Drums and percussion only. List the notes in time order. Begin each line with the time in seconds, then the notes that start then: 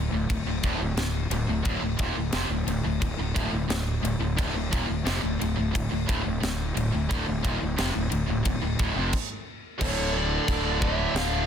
0.30 kick, ride
0.63 kick, ride
0.97 snare, ride
1.31 ride
1.65 kick, ride
1.99 kick, ride
2.33 snare, ride
2.68 ride
3.02 kick, ride
3.36 kick, ride
3.70 snare, ride
4.05 ride
4.39 kick, ride
4.73 kick, ride
5.06 snare, ride
5.41 ride
5.75 kick, ride
6.09 kick, ride
6.43 snare, ride
6.77 ride
7.11 kick, ride
7.45 kick, ride
7.78 snare, ride
8.12 ride
8.45 kick, ride
8.79 kick, ride
9.13 kick, crash
9.81 kick, crash
10.48 kick, crash
10.82 kick
11.16 snare, crash